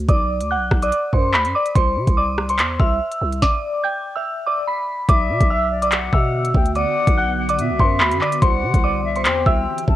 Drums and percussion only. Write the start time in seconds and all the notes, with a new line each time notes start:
0.09 kick, closed hi-hat
0.41 closed hi-hat
0.71 kick, cross-stick
0.82 closed hi-hat
0.92 closed hi-hat
1.13 kick
1.34 clap
1.45 closed hi-hat
1.66 closed hi-hat
1.75 kick, closed hi-hat
2.07 kick, closed hi-hat
2.38 cross-stick
2.49 closed hi-hat
2.59 clap, closed hi-hat
2.80 kick
3.11 closed hi-hat
3.32 closed hi-hat
3.42 kick, snare, closed hi-hat
5.09 kick, closed hi-hat
5.41 kick, closed hi-hat
5.82 closed hi-hat
5.92 clap, closed hi-hat
6.13 kick
6.45 closed hi-hat
6.54 kick
6.66 closed hi-hat
6.75 closed hi-hat
7.07 kick, closed hi-hat
7.49 closed hi-hat
7.59 closed hi-hat
7.79 kick
8.00 clap
8.11 closed hi-hat
8.21 clap
8.32 closed hi-hat
8.42 kick, closed hi-hat
8.74 kick, closed hi-hat
9.16 closed hi-hat
9.25 clap, closed hi-hat
9.46 kick
9.78 closed hi-hat
9.88 kick